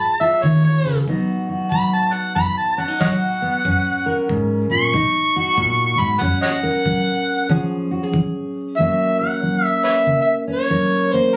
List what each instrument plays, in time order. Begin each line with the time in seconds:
Already playing: steel-string acoustic guitar G#2 F4 G#4
0.00 harmonica A5
0.20 steel-string acoustic guitar F4, harmonica E5
0.42 steel-string acoustic guitar D#3, harmonica C#5, kick
0.64 harmonica C#5
0.84 steel-string acoustic guitar C#3
1.07 steel-string acoustic guitar B2 F#3 B3 D#4 F#4, kick
1.49 steel-string acoustic guitar F#4
1.71 steel-string acoustic guitar F#3, harmonica B5, kick
1.93 harmonica A5
2.13 harmonica F#5
2.36 steel-string acoustic guitar F#2, harmonica B5, kick
2.58 harmonica A5
2.78 steel-string acoustic guitar C#4, harmonica F#5
2.88 steel-string acoustic guitar D#4
3.01 steel-string acoustic guitar F#3 F#4, harmonica C#5 D#5 F#5, kick
3.42 steel-string acoustic guitar B3
3.65 steel-string acoustic guitar F#2 C#4, kick
4.06 steel-string acoustic guitar A#4
4.29 steel-string acoustic guitar G#2, kick
4.71 steel-string acoustic guitar A#2, harmonica C#6
4.94 steel-string acoustic guitar B2 D#4, kick
5.36 steel-string acoustic guitar F#4
5.58 steel-string acoustic guitar A#2, kick
5.99 steel-string acoustic guitar G#2, harmonica B5
6.20 steel-string acoustic guitar F#2 C#4, harmonica F#5, kick
6.42 harmonica C#5 D#5 F#5
6.63 steel-string acoustic guitar A#4
6.86 steel-string acoustic guitar F#3, kick
7.49 steel-string acoustic guitar C#3 F3 C#4 G#4, kick
7.91 steel-string acoustic guitar F#4
8.03 steel-string acoustic guitar G#4
8.14 steel-string acoustic guitar F3, kick
8.77 steel-string acoustic guitar F#2 F#3 A#3, harmonica E5
8.81 steel-string acoustic guitar C#4 A#4
9.19 steel-string acoustic guitar A#4, harmonica F#5
9.43 steel-string acoustic guitar F#3
9.65 harmonica E5
9.84 harmonica B4 C#5 E5
10.06 steel-string acoustic guitar C#3
10.21 harmonica E5
10.47 steel-string acoustic guitar C#4
10.52 harmonica C#5
10.70 steel-string acoustic guitar F#3 A#4
11.12 steel-string acoustic guitar A#3, harmonica C5